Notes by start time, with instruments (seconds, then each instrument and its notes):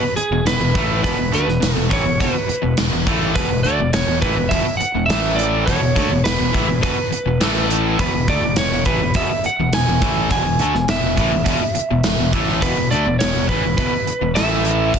Already playing: lead electric guitar B4
0.01 muted distorted electric guitar stroke, muted fingered electric bass stroke, muted overdriven electric guitar stroke
0.16 lead electric guitar G#4, muted fingered electric bass stroke, muted distorted electric guitar stroke, muted overdriven electric guitar stroke, closed hi-hat
0.30 fingered electric bass E1, overdriven electric guitar E2 B2
0.45 fingered electric bass E1, overdriven electric guitar E2 B2, lead electric guitar B4, snare, closed hi-hat
0.60 fingered electric bass E1, overdriven electric guitar E2 B2
0.75 fingered electric bass A1, overdriven electric guitar A2 E3 A3, kick, closed hi-hat
1.04 fingered electric bass E1, overdriven electric guitar E2 B2, lead electric guitar B4, kick, closed hi-hat
1.18 fingered electric bass E1, overdriven electric guitar E2 B2
1.33 fingered electric bass D2, overdriven electric guitar D3 A3, lead electric guitar B4, closed hi-hat
1.47 fingered electric bass E1, overdriven electric guitar E2 B2, snare
1.60 fingered electric bass E1, overdriven electric guitar E2 B2, snare, closed hi-hat
1.76 fingered electric bass E1, overdriven electric guitar E2 B2, lead electric guitar A4
1.90 fingered electric bass A1, overdriven electric guitar A2 E3, lead electric guitar C#5, kick, closed hi-hat
2.05 fingered electric bass E1, overdriven electric guitar E2 B2
2.20 fingered electric bass E1, overdriven electric guitar E2 B2, lead electric guitar B4, kick, closed hi-hat
2.34 muted distorted electric guitar stroke, muted overdriven electric guitar stroke, muted fingered electric bass stroke
2.48 muted overdriven electric guitar stroke, muted distorted electric guitar stroke, muted fingered electric bass stroke, closed hi-hat
2.62 fingered electric bass E1, overdriven electric guitar E2 B2
2.77 fingered electric bass E1, overdriven electric guitar E2 B2, snare, closed hi-hat
2.92 fingered electric bass E1, overdriven electric guitar E2 B2
3.06 fingered electric bass A1, overdriven electric guitar A2 E3 A3, kick, closed hi-hat
3.35 fingered electric bass E1, overdriven electric guitar E2 B2, lead electric guitar B4, kick, closed hi-hat
3.50 fingered electric bass E1, overdriven electric guitar E2 B2
3.63 fingered electric bass D2, overdriven electric guitar D3 A3, lead electric guitar D5, closed hi-hat
3.80 fingered electric bass E1, overdriven electric guitar E2 B2
3.93 fingered electric bass E1, overdriven electric guitar E2 B2, lead electric guitar C#5, snare, closed hi-hat
4.07 fingered electric bass E1, overdriven electric guitar E2 B2
4.22 fingered electric bass A1, overdriven electric guitar A2 E3, lead electric guitar B4, kick, closed hi-hat
4.37 fingered electric bass E1, overdriven electric guitar E2 B2
4.49 fingered electric bass E1, overdriven electric guitar E2 B2, lead electric guitar E5, kick, closed hi-hat
4.65 muted distorted electric guitar stroke, muted overdriven electric guitar stroke, muted fingered electric bass stroke
4.77 lead electric guitar F#5, muted overdriven electric guitar stroke, muted fingered electric bass stroke, muted distorted electric guitar stroke, closed hi-hat
4.95 fingered electric bass E1, overdriven electric guitar E2 B2
5.06 fingered electric bass A1, overdriven electric guitar A2 E3 A3, lead electric guitar E5, closed hi-hat
5.10 snare
5.36 lead electric guitar D5, closed hi-hat
5.66 fingered electric bass E1, overdriven electric guitar E2 B2, lead electric guitar C#5, kick, closed hi-hat
5.81 fingered electric bass E1, overdriven electric guitar E2 B2
5.95 fingered electric bass D2, overdriven electric guitar D3 A3, kick, closed hi-hat
6.10 fingered electric bass E1, overdriven electric guitar E2 B2
6.24 fingered electric bass E1, overdriven electric guitar E2 B2, lead electric guitar B4, snare, closed hi-hat
6.38 fingered electric bass E1, overdriven electric guitar E2 B2
6.52 fingered electric bass A1, overdriven electric guitar A2 E3, kick, closed hi-hat
6.68 fingered electric bass E1, overdriven electric guitar E2 B2
6.81 fingered electric bass E1, overdriven electric guitar E2 B2, lead electric guitar B4, kick, closed hi-hat
6.96 muted overdriven electric guitar stroke, muted fingered electric bass stroke, muted distorted electric guitar stroke
7.11 muted overdriven electric guitar stroke, muted fingered electric bass stroke, muted distorted electric guitar stroke, closed hi-hat
7.26 fingered electric bass E1, overdriven electric guitar E2 B2
7.40 fingered electric bass A1, overdriven electric guitar A2 E3 A3, snare, closed hi-hat
7.70 closed hi-hat
7.99 fingered electric bass E1, overdriven electric guitar E2 B2, lead electric guitar B4, kick, closed hi-hat
8.13 fingered electric bass E1, overdriven electric guitar E2 B2
8.28 fingered electric bass D2, overdriven electric guitar D3 A3, lead electric guitar D5, kick, closed hi-hat
8.42 fingered electric bass E1, overdriven electric guitar E2 B2
8.56 fingered electric bass E1, overdriven electric guitar E2, lead electric guitar C#5, snare, closed hi-hat
8.60 overdriven electric guitar B2
8.71 fingered electric bass E1, overdriven electric guitar E2 B2
8.85 fingered electric bass A1, overdriven electric guitar A2 E3, lead electric guitar B4, kick, closed hi-hat
9.01 fingered electric bass E1, overdriven electric guitar E2 B2
9.14 fingered electric bass E1, overdriven electric guitar E2 B2, lead electric guitar E5, kick, closed hi-hat
9.30 muted fingered electric bass stroke, muted distorted electric guitar stroke, muted overdriven electric guitar stroke
9.44 lead electric guitar F#5, muted fingered electric bass stroke, muted distorted electric guitar stroke, muted overdriven electric guitar stroke, closed hi-hat
9.59 fingered electric bass E1, overdriven electric guitar E2 B2
9.72 fingered electric bass E1, overdriven electric guitar E2 B2, lead electric guitar G#5, snare, closed hi-hat
9.88 fingered electric bass E1, overdriven electric guitar E2 B2
10.01 fingered electric bass A1, overdriven electric guitar A2 E3 A3, kick, closed hi-hat
10.30 fingered electric bass E1, overdriven electric guitar E2 B2, lead electric guitar G#5, kick, closed hi-hat
10.46 fingered electric bass E1, overdriven electric guitar E2 B2
10.59 fingered electric bass D2, overdriven electric guitar D3 A3, closed hi-hat
10.75 fingered electric bass E1, overdriven electric guitar E2 B2, snare
10.88 fingered electric bass E1, overdriven electric guitar E2 B2, lead electric guitar E5, snare, closed hi-hat
11.02 fingered electric bass E1, overdriven electric guitar E2, distorted electric guitar B2
11.07 overdriven electric guitar B2
11.17 fingered electric bass A1, overdriven electric guitar A2 E3, kick, closed hi-hat
11.31 fingered electric bass E1, overdriven electric guitar E2, distorted electric guitar B2
11.35 overdriven electric guitar B2
11.44 fingered electric bass E1, distorted electric guitar E2 B2, kick, closed hi-hat
11.48 overdriven electric guitar E2 B2
11.59 muted distorted electric guitar stroke, muted fingered electric bass stroke, muted overdriven electric guitar stroke
11.75 muted distorted electric guitar stroke, muted fingered electric bass stroke, muted overdriven electric guitar stroke, closed hi-hat
11.91 fingered electric bass E1, overdriven electric guitar E2 B2
12.04 fingered electric bass E1, overdriven electric guitar E2 B2, snare, closed hi-hat
12.19 fingered electric bass E1, overdriven electric guitar E2 B2
12.32 fingered electric bass A1, overdriven electric guitar A2 E3 A3, kick, closed hi-hat
12.48 snare
12.62 fingered electric bass E1, overdriven electric guitar E2 B2, lead electric guitar B4, kick, closed hi-hat
12.77 fingered electric bass E1, overdriven electric guitar E2 B2
12.91 fingered electric bass D2, overdriven electric guitar D3 A3, lead electric guitar D5, closed hi-hat
13.07 fingered electric bass E1, overdriven electric guitar E2 B2
13.19 fingered electric bass E1, lead electric guitar C#5, snare, closed hi-hat
13.23 overdriven electric guitar E2 B2
13.36 fingered electric bass E1, overdriven electric guitar E2 B2
13.49 fingered electric bass A1, overdriven electric guitar A2 E3, lead electric guitar B4, kick, closed hi-hat
13.65 fingered electric bass E1, overdriven electric guitar E2 B2
13.77 fingered electric bass E1, overdriven electric guitar E2 B2, lead electric guitar B4, kick, closed hi-hat
13.93 muted distorted electric guitar stroke, muted fingered electric bass stroke, muted overdriven electric guitar stroke
14.07 muted distorted electric guitar stroke, muted fingered electric bass stroke, muted overdriven electric guitar stroke, closed hi-hat
14.21 fingered electric bass E1, overdriven electric guitar E2 B2
14.34 fingered electric bass A1, overdriven electric guitar A2 E3 A3, lead electric guitar E5, snare, closed hi-hat
14.65 closed hi-hat
14.94 kick, crash